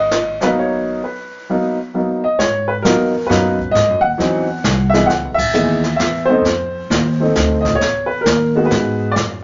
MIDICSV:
0, 0, Header, 1, 4, 480
1, 0, Start_track
1, 0, Key_signature, 5, "minor"
1, 0, Tempo, 451807
1, 1097, Time_signature, 3, 2, 24, 8
1, 10022, End_track
2, 0, Start_track
2, 0, Title_t, "Grand piano"
2, 0, Program_c, 0, 0
2, 0, Note_on_c, 0, 75, 92
2, 447, Note_on_c, 0, 54, 68
2, 450, Note_on_c, 0, 58, 68
2, 455, Note_on_c, 0, 71, 88
2, 462, Note_on_c, 0, 59, 62
2, 464, Note_on_c, 0, 63, 79
2, 467, Note_off_c, 0, 75, 0
2, 508, Note_off_c, 0, 71, 0
2, 631, Note_on_c, 0, 73, 72
2, 1064, Note_off_c, 0, 54, 0
2, 1065, Note_off_c, 0, 58, 0
2, 1071, Note_off_c, 0, 59, 0
2, 1072, Note_off_c, 0, 63, 0
2, 1103, Note_on_c, 0, 71, 65
2, 1119, Note_off_c, 0, 73, 0
2, 1587, Note_on_c, 0, 54, 58
2, 1595, Note_on_c, 0, 58, 54
2, 1595, Note_on_c, 0, 59, 52
2, 1598, Note_on_c, 0, 63, 64
2, 1866, Note_off_c, 0, 54, 0
2, 1869, Note_off_c, 0, 59, 0
2, 1870, Note_off_c, 0, 58, 0
2, 1871, Note_off_c, 0, 63, 0
2, 2021, Note_off_c, 0, 71, 0
2, 2062, Note_on_c, 0, 54, 50
2, 2066, Note_on_c, 0, 58, 44
2, 2071, Note_on_c, 0, 59, 46
2, 2076, Note_on_c, 0, 63, 53
2, 2343, Note_off_c, 0, 54, 0
2, 2346, Note_off_c, 0, 58, 0
2, 2348, Note_off_c, 0, 59, 0
2, 2350, Note_off_c, 0, 63, 0
2, 2378, Note_on_c, 0, 75, 85
2, 2537, Note_on_c, 0, 73, 92
2, 2548, Note_off_c, 0, 75, 0
2, 2845, Note_on_c, 0, 71, 91
2, 2862, Note_off_c, 0, 73, 0
2, 2898, Note_off_c, 0, 71, 0
2, 3001, Note_on_c, 0, 70, 82
2, 3018, Note_on_c, 0, 54, 67
2, 3026, Note_on_c, 0, 58, 63
2, 3029, Note_on_c, 0, 59, 65
2, 3031, Note_on_c, 0, 63, 75
2, 3302, Note_off_c, 0, 54, 0
2, 3306, Note_off_c, 0, 58, 0
2, 3307, Note_off_c, 0, 59, 0
2, 3308, Note_off_c, 0, 63, 0
2, 3457, Note_off_c, 0, 70, 0
2, 3469, Note_on_c, 0, 71, 83
2, 3494, Note_on_c, 0, 54, 68
2, 3499, Note_on_c, 0, 58, 67
2, 3501, Note_on_c, 0, 59, 57
2, 3509, Note_on_c, 0, 63, 73
2, 3780, Note_off_c, 0, 54, 0
2, 3782, Note_off_c, 0, 58, 0
2, 3783, Note_off_c, 0, 59, 0
2, 3787, Note_off_c, 0, 63, 0
2, 3946, Note_on_c, 0, 75, 106
2, 3981, Note_off_c, 0, 71, 0
2, 4260, Note_on_c, 0, 78, 105
2, 4287, Note_off_c, 0, 75, 0
2, 4438, Note_on_c, 0, 52, 74
2, 4442, Note_on_c, 0, 54, 66
2, 4449, Note_on_c, 0, 60, 65
2, 4453, Note_on_c, 0, 63, 80
2, 4732, Note_off_c, 0, 52, 0
2, 4734, Note_off_c, 0, 54, 0
2, 4737, Note_off_c, 0, 60, 0
2, 4739, Note_off_c, 0, 63, 0
2, 5195, Note_off_c, 0, 78, 0
2, 5201, Note_on_c, 0, 76, 100
2, 5237, Note_on_c, 0, 52, 78
2, 5241, Note_on_c, 0, 56, 72
2, 5246, Note_on_c, 0, 59, 66
2, 5248, Note_on_c, 0, 63, 80
2, 5376, Note_on_c, 0, 78, 105
2, 5396, Note_off_c, 0, 52, 0
2, 5398, Note_off_c, 0, 56, 0
2, 5401, Note_off_c, 0, 59, 0
2, 5401, Note_off_c, 0, 76, 0
2, 5402, Note_off_c, 0, 63, 0
2, 5678, Note_on_c, 0, 76, 108
2, 5688, Note_off_c, 0, 78, 0
2, 5882, Note_on_c, 0, 56, 64
2, 5883, Note_on_c, 0, 52, 66
2, 5885, Note_on_c, 0, 59, 58
2, 5890, Note_on_c, 0, 63, 69
2, 6173, Note_off_c, 0, 52, 0
2, 6173, Note_off_c, 0, 56, 0
2, 6174, Note_off_c, 0, 59, 0
2, 6177, Note_off_c, 0, 63, 0
2, 6319, Note_off_c, 0, 76, 0
2, 6335, Note_on_c, 0, 76, 87
2, 6645, Note_on_c, 0, 72, 98
2, 6680, Note_off_c, 0, 76, 0
2, 6681, Note_on_c, 0, 57, 66
2, 6685, Note_on_c, 0, 59, 65
2, 6687, Note_on_c, 0, 60, 69
2, 6692, Note_on_c, 0, 63, 78
2, 6837, Note_off_c, 0, 57, 0
2, 6839, Note_off_c, 0, 59, 0
2, 6840, Note_off_c, 0, 60, 0
2, 6843, Note_off_c, 0, 63, 0
2, 7649, Note_on_c, 0, 57, 62
2, 7655, Note_on_c, 0, 60, 60
2, 7662, Note_on_c, 0, 63, 66
2, 8083, Note_on_c, 0, 75, 88
2, 8151, Note_off_c, 0, 72, 0
2, 8237, Note_on_c, 0, 73, 92
2, 8261, Note_off_c, 0, 75, 0
2, 8263, Note_off_c, 0, 57, 0
2, 8266, Note_off_c, 0, 60, 0
2, 8270, Note_off_c, 0, 63, 0
2, 8566, Note_on_c, 0, 71, 86
2, 8590, Note_off_c, 0, 73, 0
2, 8723, Note_on_c, 0, 70, 76
2, 8742, Note_off_c, 0, 71, 0
2, 9087, Note_on_c, 0, 56, 65
2, 9087, Note_on_c, 0, 59, 55
2, 9091, Note_on_c, 0, 63, 59
2, 9097, Note_on_c, 0, 66, 72
2, 9195, Note_on_c, 0, 71, 79
2, 9245, Note_off_c, 0, 70, 0
2, 9670, Note_off_c, 0, 71, 0
2, 9684, Note_on_c, 0, 74, 95
2, 9701, Note_off_c, 0, 59, 0
2, 9702, Note_off_c, 0, 56, 0
2, 9704, Note_off_c, 0, 63, 0
2, 9706, Note_off_c, 0, 66, 0
2, 9760, Note_off_c, 0, 74, 0
2, 10022, End_track
3, 0, Start_track
3, 0, Title_t, "Upright bass"
3, 0, Program_c, 1, 32
3, 0, Note_on_c, 1, 32, 66
3, 1051, Note_off_c, 1, 32, 0
3, 2542, Note_on_c, 1, 44, 76
3, 3008, Note_off_c, 1, 44, 0
3, 3023, Note_on_c, 1, 40, 83
3, 3488, Note_off_c, 1, 40, 0
3, 3502, Note_on_c, 1, 42, 101
3, 3968, Note_off_c, 1, 42, 0
3, 3981, Note_on_c, 1, 44, 80
3, 4136, Note_off_c, 1, 44, 0
3, 4136, Note_on_c, 1, 42, 54
3, 4288, Note_off_c, 1, 42, 0
3, 4295, Note_on_c, 1, 39, 72
3, 4447, Note_off_c, 1, 39, 0
3, 4452, Note_on_c, 1, 40, 86
3, 4922, Note_off_c, 1, 40, 0
3, 4932, Note_on_c, 1, 36, 96
3, 5402, Note_off_c, 1, 36, 0
3, 5408, Note_on_c, 1, 37, 71
3, 5571, Note_off_c, 1, 37, 0
3, 5571, Note_on_c, 1, 35, 55
3, 5723, Note_off_c, 1, 35, 0
3, 5729, Note_on_c, 1, 32, 69
3, 5883, Note_off_c, 1, 32, 0
3, 5889, Note_on_c, 1, 39, 98
3, 6360, Note_off_c, 1, 39, 0
3, 6372, Note_on_c, 1, 40, 101
3, 6841, Note_off_c, 1, 40, 0
3, 6849, Note_on_c, 1, 41, 75
3, 7319, Note_off_c, 1, 41, 0
3, 7332, Note_on_c, 1, 39, 95
3, 7801, Note_off_c, 1, 39, 0
3, 7819, Note_on_c, 1, 38, 106
3, 8284, Note_off_c, 1, 38, 0
3, 8296, Note_on_c, 1, 40, 69
3, 8762, Note_off_c, 1, 40, 0
3, 8770, Note_on_c, 1, 39, 94
3, 9239, Note_off_c, 1, 39, 0
3, 9250, Note_on_c, 1, 44, 96
3, 9718, Note_off_c, 1, 44, 0
3, 9734, Note_on_c, 1, 42, 83
3, 10022, Note_off_c, 1, 42, 0
3, 10022, End_track
4, 0, Start_track
4, 0, Title_t, "Drums"
4, 118, Note_on_c, 9, 44, 55
4, 120, Note_on_c, 9, 38, 60
4, 224, Note_off_c, 9, 44, 0
4, 226, Note_off_c, 9, 38, 0
4, 434, Note_on_c, 9, 38, 36
4, 540, Note_off_c, 9, 38, 0
4, 2542, Note_on_c, 9, 36, 22
4, 2544, Note_on_c, 9, 25, 49
4, 2544, Note_on_c, 9, 38, 45
4, 2649, Note_off_c, 9, 36, 0
4, 2650, Note_off_c, 9, 38, 0
4, 3023, Note_on_c, 9, 36, 22
4, 3025, Note_on_c, 9, 44, 55
4, 3027, Note_on_c, 9, 38, 54
4, 3129, Note_off_c, 9, 36, 0
4, 3131, Note_off_c, 9, 44, 0
4, 3133, Note_off_c, 9, 38, 0
4, 3502, Note_on_c, 9, 36, 16
4, 3513, Note_on_c, 9, 38, 45
4, 3608, Note_off_c, 9, 36, 0
4, 3619, Note_off_c, 9, 38, 0
4, 3814, Note_on_c, 9, 36, 50
4, 3920, Note_off_c, 9, 36, 0
4, 3986, Note_off_c, 9, 25, 0
4, 3986, Note_on_c, 9, 25, 44
4, 3986, Note_on_c, 9, 38, 44
4, 4092, Note_off_c, 9, 38, 0
4, 4455, Note_on_c, 9, 36, 25
4, 4462, Note_on_c, 9, 38, 42
4, 4561, Note_off_c, 9, 36, 0
4, 4568, Note_off_c, 9, 38, 0
4, 4928, Note_on_c, 9, 44, 49
4, 4930, Note_on_c, 9, 36, 18
4, 4930, Note_on_c, 9, 38, 65
4, 5035, Note_off_c, 9, 44, 0
4, 5037, Note_off_c, 9, 36, 0
4, 5037, Note_off_c, 9, 38, 0
4, 5246, Note_on_c, 9, 38, 37
4, 5352, Note_off_c, 9, 38, 0
4, 5410, Note_on_c, 9, 36, 21
4, 5413, Note_off_c, 9, 25, 0
4, 5413, Note_on_c, 9, 25, 48
4, 5413, Note_on_c, 9, 38, 43
4, 5516, Note_off_c, 9, 36, 0
4, 5519, Note_off_c, 9, 38, 0
4, 5722, Note_on_c, 9, 36, 78
4, 5723, Note_on_c, 9, 49, 79
4, 5828, Note_off_c, 9, 36, 0
4, 5829, Note_off_c, 9, 49, 0
4, 5884, Note_on_c, 9, 44, 63
4, 5990, Note_off_c, 9, 44, 0
4, 6198, Note_on_c, 9, 38, 39
4, 6304, Note_off_c, 9, 38, 0
4, 6368, Note_on_c, 9, 38, 41
4, 6371, Note_on_c, 9, 36, 19
4, 6474, Note_off_c, 9, 38, 0
4, 6477, Note_off_c, 9, 36, 0
4, 6850, Note_off_c, 9, 25, 0
4, 6850, Note_on_c, 9, 25, 46
4, 6850, Note_on_c, 9, 38, 45
4, 6851, Note_on_c, 9, 36, 29
4, 6956, Note_off_c, 9, 38, 0
4, 6957, Note_off_c, 9, 36, 0
4, 7335, Note_on_c, 9, 36, 21
4, 7338, Note_on_c, 9, 38, 49
4, 7441, Note_off_c, 9, 36, 0
4, 7444, Note_off_c, 9, 38, 0
4, 7812, Note_on_c, 9, 44, 55
4, 7814, Note_on_c, 9, 38, 58
4, 7816, Note_on_c, 9, 36, 16
4, 7918, Note_off_c, 9, 44, 0
4, 7920, Note_off_c, 9, 38, 0
4, 7922, Note_off_c, 9, 36, 0
4, 8126, Note_on_c, 9, 38, 40
4, 8128, Note_on_c, 9, 36, 66
4, 8233, Note_off_c, 9, 38, 0
4, 8234, Note_off_c, 9, 36, 0
4, 8294, Note_on_c, 9, 36, 23
4, 8296, Note_off_c, 9, 25, 0
4, 8296, Note_on_c, 9, 25, 53
4, 8296, Note_on_c, 9, 38, 47
4, 8400, Note_off_c, 9, 36, 0
4, 8403, Note_off_c, 9, 38, 0
4, 8773, Note_on_c, 9, 44, 55
4, 8774, Note_on_c, 9, 36, 22
4, 8775, Note_on_c, 9, 38, 56
4, 8879, Note_off_c, 9, 44, 0
4, 8880, Note_off_c, 9, 36, 0
4, 8882, Note_off_c, 9, 38, 0
4, 9249, Note_on_c, 9, 38, 44
4, 9252, Note_on_c, 9, 36, 26
4, 9356, Note_off_c, 9, 38, 0
4, 9359, Note_off_c, 9, 36, 0
4, 9731, Note_off_c, 9, 25, 0
4, 9731, Note_on_c, 9, 25, 51
4, 9731, Note_on_c, 9, 36, 26
4, 9731, Note_on_c, 9, 38, 46
4, 9837, Note_off_c, 9, 36, 0
4, 9838, Note_off_c, 9, 38, 0
4, 10022, Note_off_c, 9, 25, 0
4, 10022, End_track
0, 0, End_of_file